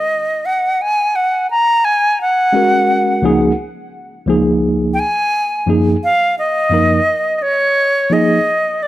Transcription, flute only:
0, 0, Header, 1, 2, 480
1, 0, Start_track
1, 0, Tempo, 697674
1, 1503, Time_signature, 4, 2, 24, 8
1, 6106, End_track
2, 0, Start_track
2, 0, Title_t, "Flute"
2, 0, Program_c, 0, 73
2, 0, Note_on_c, 0, 75, 84
2, 313, Note_on_c, 0, 78, 78
2, 323, Note_off_c, 0, 75, 0
2, 561, Note_on_c, 0, 80, 94
2, 571, Note_off_c, 0, 78, 0
2, 795, Note_on_c, 0, 78, 80
2, 805, Note_off_c, 0, 80, 0
2, 1029, Note_off_c, 0, 78, 0
2, 1036, Note_on_c, 0, 82, 99
2, 1270, Note_on_c, 0, 80, 101
2, 1281, Note_off_c, 0, 82, 0
2, 1507, Note_off_c, 0, 80, 0
2, 1522, Note_on_c, 0, 78, 93
2, 2445, Note_off_c, 0, 78, 0
2, 3397, Note_on_c, 0, 79, 85
2, 3436, Note_on_c, 0, 80, 94
2, 3446, Note_off_c, 0, 79, 0
2, 3909, Note_off_c, 0, 80, 0
2, 4154, Note_on_c, 0, 77, 100
2, 4372, Note_off_c, 0, 77, 0
2, 4395, Note_on_c, 0, 75, 96
2, 5081, Note_off_c, 0, 75, 0
2, 5081, Note_on_c, 0, 75, 63
2, 5107, Note_on_c, 0, 73, 105
2, 5117, Note_off_c, 0, 75, 0
2, 5592, Note_on_c, 0, 75, 96
2, 5603, Note_off_c, 0, 73, 0
2, 6072, Note_on_c, 0, 74, 81
2, 6083, Note_off_c, 0, 75, 0
2, 6106, Note_off_c, 0, 74, 0
2, 6106, End_track
0, 0, End_of_file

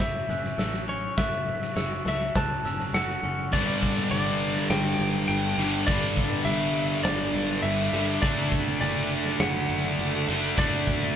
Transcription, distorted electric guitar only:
0, 0, Header, 1, 2, 480
1, 0, Start_track
1, 0, Tempo, 587659
1, 961, Time_signature, 4, 2, 24, 8
1, 9115, End_track
2, 0, Start_track
2, 0, Title_t, "Distorted electric guitar"
2, 0, Program_c, 0, 30
2, 2878, Note_on_c, 0, 43, 93
2, 2889, Note_on_c, 0, 50, 104
2, 2899, Note_on_c, 0, 55, 102
2, 4543, Note_off_c, 0, 43, 0
2, 4548, Note_off_c, 0, 55, 0
2, 4549, Note_off_c, 0, 50, 0
2, 4558, Note_on_c, 0, 55, 86
2, 4569, Note_on_c, 0, 50, 75
2, 4580, Note_on_c, 0, 43, 74
2, 4784, Note_off_c, 0, 55, 0
2, 4789, Note_off_c, 0, 50, 0
2, 4791, Note_off_c, 0, 43, 0
2, 4800, Note_on_c, 0, 43, 101
2, 4813, Note_on_c, 0, 50, 107
2, 4822, Note_on_c, 0, 55, 112
2, 6464, Note_off_c, 0, 43, 0
2, 6466, Note_off_c, 0, 55, 0
2, 6471, Note_off_c, 0, 50, 0
2, 6476, Note_on_c, 0, 55, 89
2, 6490, Note_on_c, 0, 50, 79
2, 6497, Note_on_c, 0, 43, 76
2, 6702, Note_off_c, 0, 55, 0
2, 6705, Note_off_c, 0, 50, 0
2, 6713, Note_off_c, 0, 43, 0
2, 6715, Note_on_c, 0, 50, 98
2, 6727, Note_on_c, 0, 57, 111
2, 6735, Note_on_c, 0, 62, 110
2, 8383, Note_off_c, 0, 50, 0
2, 8389, Note_off_c, 0, 57, 0
2, 8398, Note_off_c, 0, 62, 0
2, 8401, Note_on_c, 0, 62, 97
2, 8411, Note_on_c, 0, 57, 87
2, 8422, Note_on_c, 0, 50, 71
2, 8628, Note_off_c, 0, 50, 0
2, 8631, Note_off_c, 0, 57, 0
2, 8638, Note_on_c, 0, 50, 90
2, 8651, Note_on_c, 0, 57, 92
2, 8657, Note_off_c, 0, 62, 0
2, 8661, Note_on_c, 0, 62, 101
2, 9115, Note_off_c, 0, 50, 0
2, 9115, Note_off_c, 0, 57, 0
2, 9115, Note_off_c, 0, 62, 0
2, 9115, End_track
0, 0, End_of_file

